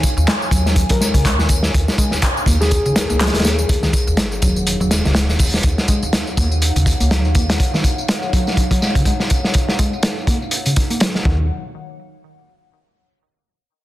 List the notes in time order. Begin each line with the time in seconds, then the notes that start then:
Already playing: D#4 C#5 F5 G#5
0.03 kick, closed hi-hat, tambourine
0.17 D#2, tambourine
0.27 G#3, snare, clap, closed hi-hat, tambourine
0.42 tambourine
0.51 D#2 F#3, kick, closed hi-hat, tambourine
0.66 snare, tambourine
0.76 kick, closed hi-hat, tambourine
0.89 D#2 F#3 A#4, kick, closed hi-hat, tambourine
1.01 G#3, snare, tambourine
1.14 C#2 C#3, kick, closed hi-hat, tambourine
1.25 G#3, kick, clap, closed hi-hat, tambourine
1.38 D#2, snare, tambourine
1.49 kick, closed hi-hat, tambourine
1.63 snare, tambourine
1.74 D#2, kick, closed hi-hat, tambourine
1.88 snare, tambourine
1.98 G#3, kick, closed hi-hat, tambourine
2.11 D#2, snare, tambourine
2.22 kick, clap, closed hi-hat, tambourine
2.37 tambourine
2.46 D#2 A#3, kick, closed hi-hat, tambourine
2.61 G#4, snare, tambourine
2.71 kick, closed hi-hat, tambourine
2.85 D#2 C#3, tambourine
2.96 A#4, snare, closed hi-hat, tambourine
3.10 C#2 A#3, tambourine
3.20 F#3, snare, clap, closed hi-hat, tambourine
3.27 snare, closed hi-hat
3.34 D#2, snare, closed hi-hat, tambourine
3.39 snare, closed hi-hat
3.45 A#3, snare, closed hi-hat, tambourine
3.59 tambourine
3.69 D#2 D#4 C#5 F5 F#5, kick, closed hi-hat, tambourine, sub drop
3.83 D#3, snare, tambourine
3.93 kick, closed hi-hat, tambourine
4.07 D#2, tambourine
4.17 G#3, snare, closed hi-hat, tambourine
4.32 tambourine
4.42 D#2 F#3, kick, closed hi-hat, tambourine
4.56 tambourine
4.67 closed hi-hat, tambourine
4.80 D#2 F#3, tambourine
4.91 G#3, snare, closed hi-hat, tambourine
5.05 C#2 C#3, snare, tambourine
5.15 G#3, snare, closed hi-hat, tambourine
5.29 D#2, snare, tambourine
5.39 kick, open hi-hat, tambourine
5.54 snare, tambourine
5.63 D#2, kick, closed hi-hat, tambourine
5.78 snare, tambourine
5.88 G#3, kick, closed hi-hat, tambourine
6.03 D#2, tambourine
6.13 snare, closed hi-hat, tambourine
6.27 tambourine
6.37 D#2 A#3, kick, closed hi-hat, tambourine
6.52 tambourine
6.62 closed hi-hat, tambourine
6.76 D#2 C#3, closed hi-hat, tambourine
6.86 kick, closed hi-hat, tambourine
7.00 C#2 A#3, closed hi-hat, tambourine
7.11 F#3, snare, closed hi-hat, tambourine
7.24 D#2, tambourine
7.35 A#3, kick, closed hi-hat, tambourine
7.49 snare, closed hi-hat, tambourine
7.60 kick, closed hi-hat, tambourine
7.73 D#3, snare, tambourine
7.84 kick, closed hi-hat, tambourine
7.98 tambourine
8.08 G#3, snare, closed hi-hat, tambourine
8.22 tambourine
8.33 F#3, kick, closed hi-hat, tambourine
8.47 snare, tambourine
8.57 kick, closed hi-hat, tambourine
8.71 F#3, kick, closed hi-hat, tambourine
8.82 G#3, snare, tambourine
8.95 C#3, kick, closed hi-hat, tambourine
9.05 G#3, kick, closed hi-hat, tambourine
9.20 snare, tambourine
9.30 kick, closed hi-hat, tambourine
9.44 snare, tambourine
9.54 kick, closed hi-hat, tambourine
9.68 snare, tambourine
9.79 G#3, kick, closed hi-hat, tambourine
9.93 tambourine
10.03 snare, closed hi-hat, tambourine
10.18 tambourine
10.27 A#3, kick, closed hi-hat, tambourine
10.42 tambourine
10.51 closed hi-hat, tambourine
10.66 C#3, closed hi-hat, tambourine
10.76 kick, closed hi-hat, tambourine
10.90 A#3, closed hi-hat, tambourine
11.00 F#3, snare, closed hi-hat
11.15 snare
11.25 D#2 D#3 D#4 C#5 F5 F#5, kick